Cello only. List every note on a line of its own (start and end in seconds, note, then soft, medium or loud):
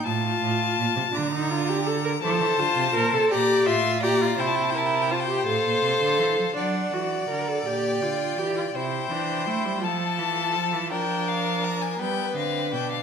0.05 0.41 A2 medium
0.41 0.77 A2 medium
0.78 0.85 A#2 medium
0.96 1.03 C3 medium
1.13 2.20 D3 loud
2.23 2.42 F3 medium
2.40 2.58 E3 medium
2.59 2.66 D3 medium
2.76 2.94 C3 medium
2.95 3.12 A#2 medium
3.12 3.20 C3 medium
3.30 3.68 A#2 medium
3.67 4.04 A2 medium
4.03 4.37 A#2 medium
4.38 5.44 C3 medium
5.47 5.64 A2 medium
5.64 5.82 A#2 medium
5.82 6.00 C3 medium
6.01 6.20 D3 medium
6.18 6.37 E3 medium
6.38 6.45 F3 medium
6.56 6.90 F#3 medium
6.92 7.28 E3 medium
7.29 7.65 D3 medium
7.66 8.03 A#2 medium
8.02 8.38 D3 medium
8.38 8.74 E3 medium
8.74 9.10 C3 medium
9.11 9.48 E3 medium
9.46 9.66 A3 medium
9.64 9.84 G3 medium
9.82 10.20 F3 medium
10.19 10.56 E3 medium
10.55 10.75 F3 medium
10.73 10.93 E3 medium
10.91 11.98 F3 medium
11.99 12.35 G3 medium
12.35 12.74 D3 medium
12.73 13.03 B2 medium